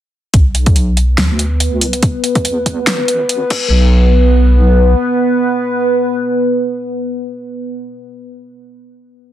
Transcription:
0.34 B1 B3 B4, kick, closed hi-hat
0.55 closed hi-hat
0.66 kick, closed hi-hat
0.76 closed hi-hat
0.97 closed hi-hat
1.18 D2, snare, closed hi-hat
1.39 closed hi-hat
1.60 closed hi-hat
1.77 C#2
1.81 open hi-hat
1.93 closed hi-hat
2.03 kick, closed hi-hat
2.24 closed hi-hat
2.35 kick, closed hi-hat
2.45 E2, closed hi-hat
2.66 kick, closed hi-hat
2.87 G#1, snare, closed hi-hat
3.08 closed hi-hat
3.29 closed hi-hat
3.50 B1 B3 B4, kick, crash

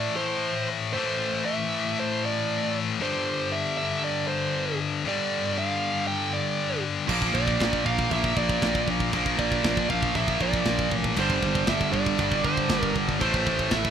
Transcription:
Already playing: A2 E3 A3 D5
0.16 C5
0.93 A2 E3 C5
0.98 A3
1.45 E5
1.99 C5
2.26 D5
3.00 G2 D3 G3 C5
3.52 E5
3.77 E5
4.04 D5
4.28 C5
5.04 G2 D3 D5
5.09 G3
5.58 F5
6.07 G5
6.33 D5
7.08 A#1 A#2 F3 A#3, kick, china, crash
7.22 kick
7.34 A#1 D5, kick
7.48 kick
7.60 A#1, kick, snare, china
7.73 kick
7.86 A#1 F5, kick
7.99 kick
8.10 A#1 A#2 F3 A#3 E5, kick, china
8.24 kick
8.37 A#1 D5, kick
8.49 kick
8.62 A#1, kick, snare, china
8.75 kick
8.87 A#1, kick
9.00 kick
9.13 A#1 A#2 F3 A#3, kick, china
9.26 kick
9.39 A#1 D5, kick
9.52 kick
9.64 A#1, kick, snare, china
9.77 kick
9.90 A#1 F5, kick
10.03 kick
10.15 A#1 A#2 F3 A#3 E5, kick, china
10.28 kick
10.41 A#1 D5, kick
10.54 kick
10.65 A#1, kick, snare, china
10.79 kick
10.91 A1, kick
11.04 kick
11.16 G1 G2 D3 G3 C5, kick, crash, china
11.30 kick
11.43 G1, kick
11.55 kick
11.67 G1 E5, kick, snare, china
11.81 kick
11.93 G1 D5, kick
12.06 kick
12.18 G1 G2 D3, kick, china
12.22 G3
12.32 kick
12.44 G1 C5, kick
12.57 kick
12.69 G1, kick, snare, china
12.83 kick
12.95 G1, kick
13.09 kick
13.20 A1 A2 E3 C5, kick, china
13.25 A3
13.34 kick
13.47 A1, kick
13.59 kick
13.71 A1 E5, kick, snare, china
13.85 kick

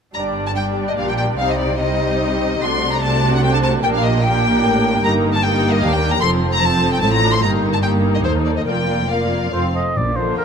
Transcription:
0.14 G1 G2 G3 D4 G4 D5 A#5
0.47 A5
0.56 G3 D4 G4 D5 G5
0.89 D#5
0.97 A#1 A#2 F5
1.09 G5
1.18 G5
1.38 C2 C3 G3 D#4 G4 C5 F5
1.50 D#5
1.59 D5
1.79 G3 D#4 G4 C5 D#5
2.61 C2 C3 A3 D4 F#4 D5 C6
2.93 A#5
3.01 A3 D4 F#4 D5 A5
3.35 F#5
3.42 C5 G5
3.54 A5
3.63 A5
3.82 A#1 A#2 A#3 D4 G4 A#4 G5
3.95 F5
4.03 D#5
4.23 A#3 D4 G4 A#4 G5
4.63 A1 A2
5.03 G1 G2 A#3 D#4 G4 A#4 A#5
5.34 A5
5.43 A#3 D#4 G4 A#4 G5
5.74 D#5
5.82 D#2 D4 F5
5.93 G5
6.13 A#5
6.21 F1 F2 F3 C4 A4 C6
6.53 A#5
6.62 F3 C4 A4 A5
6.92 G5
7.01 A1 A2 F3 C4 A4 A5
7.13 A#5
7.23 D4
7.33 C6
7.41 G1 G2 A#3 D#4 G4 A#4 A#5
7.74 A5
7.83 A#3 D#4 G4 A#4 G5
8.15 D#5
8.24 D#2 A4 C5
8.46 D5
8.57 D#5
8.66 F1 F2 A#3 F4 A#4 D5 G5
9.10 A#3 F4 A#4 D5 F5
9.52 F1 F2 C4 F4 A4 C5
9.76 D#5
9.96 A#1 A#2 D5
10.16 D3 D4 F4 A#4 C5
10.38 A#1 A#2 A#4 G5

